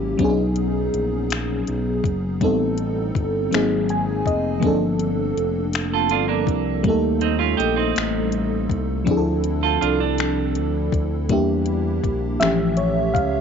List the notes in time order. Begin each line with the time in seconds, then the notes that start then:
Already playing: G#1 F#3 A#3 C#4 E4 G4
0.17 B1 F#3 B3 C#4, kick, closed hi-hat
0.22 D4 G#4
0.29 D#4
0.56 closed hi-hat
0.94 A#1, closed hi-hat
1.30 finger snap, closed hi-hat
1.67 B1, closed hi-hat
2.04 F#1, kick, closed hi-hat
2.41 A1 G3 B3 C4 D#4 A4, kick, closed hi-hat
2.78 closed hi-hat
3.15 G1, kick, closed hi-hat
3.51 G#1 F#3 A#3 C4 D#4 G#4, finger snap, closed hi-hat
3.89 G#5, closed hi-hat
4.26 F1 D#5, kick, closed hi-hat
4.60 G1 F3 A#3 C4, kick, closed hi-hat
4.65 D4 A4
4.99 closed hi-hat
5.37 F1, closed hi-hat
5.73 finger snap, closed hi-hat
5.94 F4 A4
6.09 G1 D4 F4, closed hi-hat
6.28 A#3 D4
6.47 C2, kick, closed hi-hat
6.83 D#2 G3 A3 A#3, kick, closed hi-hat
6.88 D#4 A4
7.21 C4 D#4, closed hi-hat
7.39 C#4 F4
7.57 A#1 D#4 G4, closed hi-hat
7.76 C4 D#4
7.96 A1, finger snap, closed hi-hat
8.32 closed hi-hat
8.70 C2, kick, closed hi-hat
9.04 D2 F3 C4 D4, kick, closed hi-hat
9.10 E4 G#4
9.17 A4
9.44 closed hi-hat
9.63 F4 A4
9.81 C2 D4 F4, closed hi-hat
10.00 D4
10.18 finger snap, closed hi-hat
10.55 D2, closed hi-hat
10.92 D2, kick, closed hi-hat
11.29 E2 G3 A#3 D4 E4 G4, kick, closed hi-hat
11.66 closed hi-hat
12.04 A#1, kick, closed hi-hat
12.40 A1 E3 F3 A3 C#4 G4 E5, finger snap, closed hi-hat
12.77 C#5, closed hi-hat
13.14 C#2 F5, kick, closed hi-hat